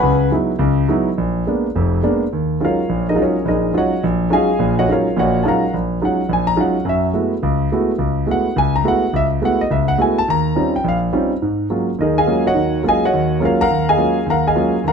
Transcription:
Already playing: B4 F#5 G#5 B5
0.03 C#2 C#3
0.31 F#3 G#3 B3 D#4 E4
0.59 C#2 C#3
0.88 F#3 G#3 B3 D#4 E4
1.18 A#1
1.47 G#3 A#3 B3 D4
1.75 F1 F2
2.03 G#3 A#3 B3 D4
2.33 D#2
2.60 F#3 G#3 C#4 D#4 F4
2.64 F4 A#4 C#5 F5
2.89 A#1
3.09 D#4 G#4 A#4 D#5
3.15 F#3 G#3 C#4 D#4 F4
3.22 C#4 G#4 A#4 C#5
3.45 A#1 D#4 G#4 A#4 D#5
3.74 F#3 G#3 C#4 D#4 F4 F#4
3.78 C#5 D#5 F#5
4.03 A#1
4.30 F#3 G#3 C#4 D#4 F4 G#4 D#5 F5 G#5
4.59 A#1 A#2
4.79 F#4 C#5 D#5 F#5
4.88 F#3 G#3 C#4 D#4 F4 A#4 F5
4.93 F4 C#5
5.16 A#1 A#2 F#4 C#5 D#5 F#5
5.43 F#3 G#3 C#4 D#4 F4 A5
5.47 A#4 F5 F#5 A#5
5.74 A#1
6.02 F#3 G#3 C#4 D#4 F4 F#5
6.29 A#1
6.33 G#5
6.47 A#5
6.56 F#3 G#3 C#4 D#4 F4
6.61 F#5
6.85 F#2 F#3
6.89 E5
7.14 G#3 A3 B3 E4 F#4
7.43 C#2
7.72 G#3 A3 B3 E4 F#4
7.99 C#2
8.26 G#3 A3 B3 E4 F#4
8.31 F#5
8.56 C#2 G#5
8.76 A#5
8.84 G#3 A3 B3 E4 F#4
8.88 F#5
9.13 C#2 E5
9.42 G#3 A3 B3 E4 F#4 F#5
9.61 D#5
9.71 C#2 E5
9.88 F#5
9.98 G#3 A3 B3 E4 F#4 G#5
10.18 A5
10.28 D#2 A#5
10.56 G3 C4 C#4 D#4 F4
10.76 G5
10.84 A#1
10.88 F5
11.13 G3 C4 C#4 D#4 F4
11.42 G#2
11.70 F#3 G#3 A#3 C#4 F4
11.99 D#2 D#4 G#4 A#4 D#5
12.18 G#4 D#5 F5 G#5
12.27 F#3 G#3 A#3 C#4 F4
12.47 F#4 C#5 D#5 F#5
12.55 D#2 D#3
12.83 F#3 G#3 A#3 C#4 F4
12.88 G#4 D#5 F5 G#5
13.05 F#4 C#5 D#5 F#5
13.13 D#2
13.40 F#3 G#3 A#3 C#4 F4
13.45 A#4 C#5 F5
13.61 A#4 F5 F#5 A#5
13.71 D#2
13.89 G#4 D#5 F5 G#5
13.97 F#3 G#3 A#3 C#4 F4
14.26 D#2
14.30 A#4 F5 F#5 A#5
14.47 G#4 D#5 F5 G#5
14.55 F#3 G#3 A#3 C#4 F4
14.84 D#2 A#5
14.88 A#4 F5 F#5

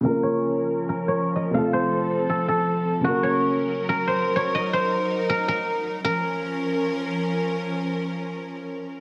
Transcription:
0.01 C#3 F3 A#3 C#4 A#4
0.06 F4 A#4
0.23 C#5
0.89 A#4
1.08 C#5
1.36 D#5
1.51 C3 A3 C4 A4 F5
1.56 F4 A4
1.73 C5
2.30 A4
2.48 A4
3.01 C#3 F#3 A#3 C#4 F#4 A#4
3.06 F#4 A#4
3.23 C#5
3.89 A#4
4.08 C5
4.36 C#5
4.55 D#4 D#5
4.73 C5
5.30 A#4
5.48 A#4
6.05 F3 C#4 A#4

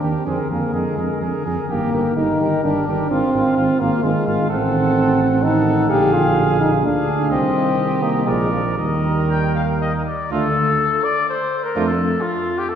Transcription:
Already playing: D4
0.02 D#2 D#3 G4 A#4
0.26 F2 D3 C4 G#4 A#4
0.50 F2 D3 A#3 G#4 A#4
0.73 F2 D3 G#3 G#4 A#4
0.97 F2 D3 G#4 A#4
1.21 F2 D3 G#4 A#4
1.45 F2 D3 G#4 A#4
1.69 G1 D#3 A#3 G4 A#4
1.92 G1 D#3 G4 A#4
2.17 G1 D#3 D#4 G4 A#4
2.40 G1 D#3 G4 A#4
2.63 G1 D#3 D4 G4 A#4
2.87 G1 D#3 G4 A#4
3.10 G#1 D#3 C4 F4 F5
3.33 G#1 D#3 F4 F5
3.56 G#1 D#3 F4 F5
3.80 G#1 D#3 A#3 F4 F5
4.03 G#1 D#3 G#3 F4 F5
4.27 G#1 D#3 F4 F5
4.49 A1 D#3 C4 A4 F#5
5.44 D#3 D#4 A4 F#5
5.90 A#1 D3 G4 G#4 F5
6.14 F4
6.61 D#4
6.84 D2 D3 D4 G#4 F5
7.30 C2 D#3 C4 G4 D#5
8.02 A#3
8.27 A#1 F3 G#3 A#4 D5
8.53 F3
8.78 D#2 D#3 G3 A#4 D#5
9.30 G5
9.55 F5
9.81 D#5
10.06 D5
10.30 D2 A3 D4 F4 A4
11.04 D5
11.29 C5
11.64 A#4
11.76 F2 A3 D4 F4
11.86 A4
12.21 F4
12.58 G4
12.69 A4

